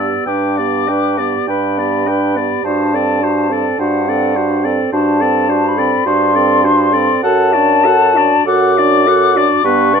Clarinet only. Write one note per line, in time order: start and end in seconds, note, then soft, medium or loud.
0.00 0.26 G4 soft
0.27 0.60 B4 soft
0.58 0.91 G4 soft
0.89 1.19 B4 soft
1.18 1.48 G4 soft
1.49 1.81 B4 soft
1.79 2.10 G4 soft
2.09 2.40 B4 soft
2.39 2.66 G4 soft
2.67 2.95 F#4 soft
2.94 3.23 A4 soft
3.22 3.53 F#4 soft
3.51 3.80 A4 soft
3.81 4.10 F#4 soft
4.08 4.38 A4 soft
4.36 4.66 F#4 soft
4.65 4.93 A4 soft
4.93 5.22 F#4 soft
5.20 5.51 A4 soft
5.49 5.78 F#4 soft
5.77 6.05 A4 soft
6.06 6.37 F#4 medium
6.35 6.64 A4 medium
6.63 6.94 F#4 medium
6.93 7.23 A4 medium
7.23 7.54 A4 medium
7.52 7.86 F#4 medium
7.84 8.16 A4 medium
8.14 8.45 F#4 soft
8.45 8.77 A4 medium
8.75 9.08 F#4 medium
9.06 9.37 A4 medium
9.35 9.64 F#4 medium
9.64 9.95 G4 medium
9.93 10.00 B4 medium